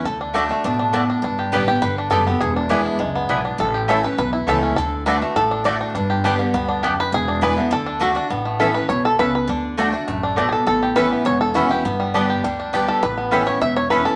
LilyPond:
<<
  \new Staff \with { instrumentName = "Mandolin" } { \time 4/4 \key d \major \tempo 4 = 203 r4 <a fis' d'' a''>8 r4. <a fis' d'' a''>8 r8 | r4 <b g' d'' a''>8 r4. <b g' d'' a''>8 r8 | r4 <b e' d'' gis''>8 r4. <b e' d'' gis''>8 r8 | r4 <a e' cis'' a''>8 r4. <a e' cis'' a''>8 r8 |
r4 <a fis' d'' a''>8 r4. <a fis' d'' a''>8 r8 | r4 <b g' d'' a''>8 r4. <b g' d'' a''>8 r8 | r4 <b e' d'' gis''>8 r4. <a fis' d'' a''>8 r8 | r4 <cis' a' e'' b''>8 r4. <cis' a' e'' b''>8 r8 |
r4 <a fis' d'' a''>8 r4. <a fis' d'' a''>8 r8 | r4 <cis' a' e'' b''>8 r4. <cis' a' e'' b''>8 r8 | r4 <b g' d'' a''>8 r4. <b g' d'' a''>8 r8 | r4 <cis' a' e'' b''>8 r4. <cis' a' e'' b''>8 r8 | }
  \new Staff \with { instrumentName = "Five-string banjo" } { \time 4/4 \key d \major << { a'8 r2. r8 | r4. g'8 b'4 a'4 | gis'8 r2. r8 | a'4 a'8 b'8 b'4 a'4 |
a'4 b'4 a'4 d''4 | r2. r8 b'8 | gis'4 b'4 a'4 fis'4 | r4 a'8 b'8 cis''8 a'8 b'8 b'8 |
r2. r16. gis'32 a'8 | a'4 b'4 cis''8 a'8 fis'4 | r2. r8 a'8 | b'4. cis''8 e''8 cis''8 b'8 a'8 | } \\ { r8 d'8 d'8 a8 d'8 d'8 d'8 d'8 | d'8 g'8 g4. d'4 b8 | r8 d'8 d'8 d'8 gis8 b8 d'8 d'8 | r8 g'4. r8 e'4 cis'8 |
r4. a4 d'4 d'8 | d'8 g'8 g8 d8 b8 d'8 g'4 | r8 d'4 d8 r8 d'4 d'8 | b8 a4. r2 |
d'4 d'8 d'8 a8 d'8 d'4 | r8 g'4 b4. r8 g'8 | b8 g8 d'8 g'8 g8 d'8 g'4 | r8 b8 g'4. r4. | } >> }
  \new Staff \with { instrumentName = "Steel-string acoustic guitar" } { \time 4/4 \key d \major << { r4 <d a d' fis'>8 <d' fis'>8 r2 | r4 <d g b g'>8 <b g'>8 r4 <d g b g'>8 <b g'>8 | r4 <d gis b e'>4 r2 | r4 <e a cis' e'>8 <cis' e'>8 r4 <e a cis' e'>4 |
r4 <d a d' fis'>8 <d' fis'>8 r4 <d a d' fis'>4 | r4 <d g b g'>8 <b g'>8 r2 | r4 <d gis b e'>8 <b e'>8 r4 <d a d' fis'>8 <d' fis'>8 | r4 <e b cis' e'>8 <cis' e'>8 r2 |
r4 <d a d' fis'>8 <d' fis'>8 r2 | r4 <e b cis' e'>4 r4 <e b cis' e'>8 <cis' e'>8 | r4 <d g b g'>4 r4 <d g b g'>4 | r4 <e b cis' e'>8 <cis' e'>8 r4 <e b cis' e'>8 <cis' e'>8 | } \\ { d2 b,4 a,4 | g,2 d2 | e,2 fis,4 gis,4 | a,2 e,2 |
d2 a,2 | g,2 g,4 fis,4 | e,2 d2 | a,2 b,4 cis4 |
d2 fis,4 b,4 | a,2 e,2 | g,2 d2 | a,2 e,2 | } >> }
  \new Staff \with { instrumentName = "Upright bass" } { \clef bass \time 4/4 \key d \major d,2 a,,2 | g,,4 a,,4 g,,4 fis,,4 | e,,2 cis,4 b,,4 | a,,2 b,,4 cis,4 |
d,2 a,,2 | g,,2 d,2 | e,,2 d,2 | a,,2 b,,4 cis,4 |
d,2 a,,2 | a,,2 e,,2 | g,,2 d,2 | a,,2 e,,2 | }
>>